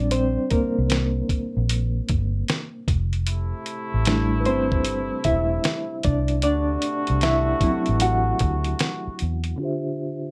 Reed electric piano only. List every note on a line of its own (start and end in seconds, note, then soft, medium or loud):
0.00 0.87 G3 soft
0.00 0.12 C4 soft
0.00 0.88 D4 medium
0.00 2.90 D5 medium
0.12 0.49 C4 medium
0.12 0.52 C5 medium
0.51 2.06 A#3 medium
0.51 2.05 A#4 medium
4.07 5.21 G3 medium
4.07 5.21 A3 medium
4.07 5.21 D4 medium
4.07 5.22 E4 medium
4.40 4.46 B4 medium
4.46 5.22 C4 medium
4.46 5.27 C5 medium
5.25 6.00 E4 medium
5.25 6.06 E5 medium
6.04 6.41 D4 medium
6.04 6.41 D5 medium
6.43 7.19 D4 medium
6.43 7.25 D5 medium
7.23 7.62 E4 medium
7.23 7.98 E5 loud
7.62 8.19 F#3 medium
7.62 8.19 C4 soft
7.62 8.19 E4 medium
8.02 9.16 F#4 medium
8.02 9.16 F#5 medium
9.56 10.31 D3 medium
9.56 10.31 D4 soft
9.56 10.31 F4 medium
9.62 10.31 G4 medium
9.62 10.31 C5 medium
9.62 10.31 E5 medium